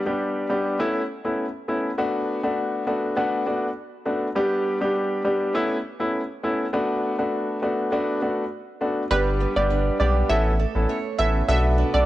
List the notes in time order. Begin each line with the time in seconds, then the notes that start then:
0.06 G3 B3 D4 G4
0.49 G3 B3 D4 G4
0.79 A3 B3 C#4 E4
1.24 A3 B3 C#4 E4
1.68 A3 B3 C#4 E4
1.98 A3 B3 D4 F#4
2.43 A3 B3 D4 F#4
2.87 A3 B3 D4 F#4
3.16 A3 B3 D4 F#4
3.46 A3 B3 D4 F#4
4.05 A3 B3 D4 F#4
4.35 G3 B3 D4 G4
4.81 G3 B3 D4 G4
5.24 G3 B3 D4 G4
5.54 A3 B3 C#4 E4
6.00 A3 B3 C#4 E4
6.43 A3 B3 C#4 E4
6.73 A3 B3 D4 F#4
7.18 A3 B3 D4 F#4
7.62 A3 B3 D4 F#4
7.92 A3 B3 D4 F#4
8.22 A3 B3 D4 F#4
8.81 A3 B3 D4 F#4
9.11 G1 G3 B3 D4 G4 B4
9.40 B3
9.56 G1 G3 B3 D4 G4 D5
9.70 D4
10.00 B1 G3 B3 D4 G4 D5
10.29 A1 A3 B3 C#4 E4 A4 E5
10.59 A4
10.75 A1 B3 C#4 E4 A4
10.89 C#5
11.19 A1 B3 C#4 E4 A4 E5
11.48 B1 B2 B3 D4 F#4 A4 E5
11.78 D4
11.94 B1 B3 D4 F#4 A4 D5